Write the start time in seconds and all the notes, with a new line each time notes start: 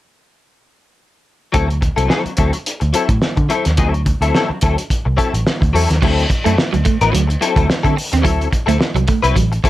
1.52 D2 F#3 C4 E4 A4, kick, closed hi-hat
1.69 muted clean electric guitar stroke, closed hi-hat
1.81 muted clean electric guitar stroke, kick, closed hi-hat
1.96 C2 F#3 C4 E4 A4, closed hi-hat
2.08 F#3 C4 E4 A4, snare
2.24 muted clean electric guitar stroke, muted picked electric bass stroke, closed hi-hat
2.37 D2 F#3 C4 E4 A4, kick, closed hi-hat
2.53 muted clean electric guitar stroke, closed hi-hat
2.66 closed hi-hat
2.80 D2, muted clean electric guitar stroke, closed hi-hat
2.93 F#3 C4 E4 A4, closed hi-hat
3.09 A2, muted clean electric guitar stroke, kick, closed hi-hat
3.22 snare
3.37 D3, muted clean electric guitar stroke, kick, closed hi-hat
3.49 F#3 C4 E4 A4, closed hi-hat
3.65 D#2, muted clean electric guitar stroke, snare, closed hi-hat
3.77 D2 F#3 C4 E4 A4, kick, closed hi-hat
3.94 muted clean electric guitar stroke, closed hi-hat
4.05 muted clean electric guitar stroke, kick, closed hi-hat
4.21 D2 F#3 C4 E4 A4, closed hi-hat
4.34 F#3 C4 E4 A4, snare
4.50 muted picked electric bass stroke, muted clean electric guitar stroke
4.61 D2 F#3 C4 E4 A4, kick, closed hi-hat
4.77 muted clean electric guitar stroke, closed hi-hat
4.90 kick, closed hi-hat
5.05 C2, muted clean electric guitar stroke
5.17 F#3 C4 E4 A4, kick, closed hi-hat
5.34 A1, muted clean electric guitar stroke, closed hi-hat
5.47 snare
5.61 D2, muted clean electric guitar stroke, kick, closed hi-hat
5.73 E2 F#3 C4 E4 A4, open hi-hat
5.90 D#2, muted clean electric guitar stroke, snare, closed hi-hat
6.02 D2 F#3 C4 E4 A4, kick, crash
6.19 closed hi-hat
6.29 muted clean electric guitar stroke, kick, closed hi-hat
6.44 F#2 F#3 A3 C4 E4 A4, closed hi-hat
6.57 muted clean electric guitar stroke, snare
6.73 D2 F#3, muted clean electric guitar stroke, closed hi-hat
6.85 A3, kick, closed hi-hat
7.01 A1 F#3 C4 E4 B4, closed hi-hat
7.13 D2 F#3, muted clean electric guitar stroke, closed hi-hat
7.28 muted clean electric guitar stroke, closed hi-hat
7.41 F#3 C4 E4 A4, muted clean electric guitar stroke, closed hi-hat
7.56 D2 F#3 A3 C4 E4 A4, kick, closed hi-hat
7.69 muted clean electric guitar stroke, snare
7.83 D3 F#3 C4 E4 A4, kick, closed hi-hat
7.96 muted clean electric guitar stroke, open hi-hat
8.12 D#2 C4, muted clean electric guitar stroke, snare, closed hi-hat
8.22 D2 F#3 C4 E4 A4, kick, closed hi-hat
8.41 closed hi-hat
8.50 muted clean electric guitar stroke, kick, closed hi-hat
8.66 D2 F#3 A3 C4 E4 A4, closed hi-hat
8.78 muted clean electric guitar stroke, snare
8.95 C2 F#3, muted clean electric guitar stroke, closed hi-hat
9.08 A3, kick, closed hi-hat
9.23 C2 F#3 C4 E4 B4, closed hi-hat
9.36 A1 F#3, muted clean electric guitar stroke, kick, closed hi-hat
9.52 muted clean electric guitar stroke, closed hi-hat
9.64 F#3 C4 E4 A4, muted clean electric guitar stroke, kick, closed hi-hat